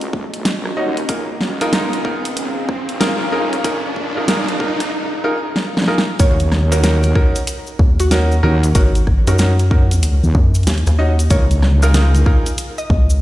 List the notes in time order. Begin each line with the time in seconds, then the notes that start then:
Already playing: C#2 C#4 F#4 D#5 A#5, riser
0.01 closed hi-hat
0.13 kick
0.34 A#1, closed hi-hat
0.45 snare, closed hi-hat
0.65 cross-stick
0.77 D#2 C#4 D#4 F#4 D#5
0.97 closed hi-hat
1.09 C#2 C#4 D#4 F4 G#4 A#4, kick, closed hi-hat
1.30 F5
1.41 C#2, snare
1.60 D#4 F4 G#4 A#4, closed hi-hat
1.73 D#4 F4 G#4 A#4, snare, closed hi-hat
1.93 closed hi-hat
2.05 D#4 F4 G#4 A#4, kick
2.25 closed hi-hat
2.37 C#2, closed hi-hat
2.69 kick, cross-stick
2.89 G#1, closed hi-hat
3.00 D#4 F4 G#4 A#4, snare, closed hi-hat
3.32 F2 D#4 F4 G#4 A#4
3.53 cross-stick, closed hi-hat
3.64 D#4 F4 G#4 A#4, kick, closed hi-hat
3.96 C#2, kick
4.17 D#4 F4 G#4 A#4
4.28 D#4 F4 G#4 A#4, snare, closed hi-hat
4.49 closed hi-hat
4.60 C#2 D#4 F4 G#4 A#4, kick
4.80 cross-stick, closed hi-hat
5.24 D#4 F4 G#4 A#4
5.56 snare
5.77 snare
5.82 snare
5.84 snare
5.86 D#4 F4 G#4, snare
5.88 A#4, snare
5.91 snare
5.98 snare
6.19 D#2 C#4 D#4 F#4 A#4 C#5, kick, closed hi-hat, cabasa
6.40 closed hi-hat, cabasa
6.52 cross-stick, snare
6.72 C#4 D#4 F#4 A#4, closed hi-hat, cabasa
6.83 C#4 D#4 F#4 A#4, snare, closed hi-hat, cabasa
7.03 closed hi-hat, cabasa
7.15 C#4 D#4 F#4 A#4, kick, cross-stick
7.36 closed hi-hat, cabasa
7.47 closed hi-hat, cabasa
7.67 cabasa
7.79 D#2, kick
8.00 F#4, closed hi-hat, cabasa
8.11 C#4 D#4 F#4 A#4, snare, closed hi-hat, cabasa
8.32 cabasa
8.43 D#2 C#4 D#4 F#4 A#4, cross-stick
8.63 closed hi-hat, cabasa
8.75 G#1 C#4 D#4 F#4 A#4, kick, closed hi-hat, cabasa
8.95 closed hi-hat, cabasa
9.07 kick, cross-stick
9.27 F#2 C#4 D#4 F#4 A#4, closed hi-hat, cabasa
9.38 C#4 D#4 F#4 A#4, snare, closed hi-hat, cabasa
9.59 closed hi-hat, cabasa
9.71 C#4 D#4 F#4 A#4, kick
9.91 closed hi-hat, cabasa
10.03 closed hi-hat, cabasa
10.23 D#2, cabasa
10.35 F#2, kick
10.54 closed hi-hat, cabasa
10.63 D#2, snare, closed hi-hat, cabasa
10.67 closed hi-hat
10.74 closed hi-hat
10.78 closed hi-hat
10.87 D#2, cross-stick, closed hi-hat, cabasa
10.98 C#4 D#4 F#4 D#5
11.19 closed hi-hat, cabasa
11.30 C#2 D#4 F4 G#4 A#4 C#5, kick, closed hi-hat, cabasa
11.51 closed hi-hat, cabasa
11.62 cross-stick, snare
11.82 D#4 F4 G#4 A#4, cabasa
11.94 D#4 F4 G#4 A#4, snare, closed hi-hat, cabasa
12.15 closed hi-hat, cabasa
12.26 D#4 F4 G#4 A#4, kick, cross-stick
12.46 closed hi-hat, cabasa
12.58 closed hi-hat, cabasa
12.78 D#5, cabasa
12.90 C#2, kick
13.10 cabasa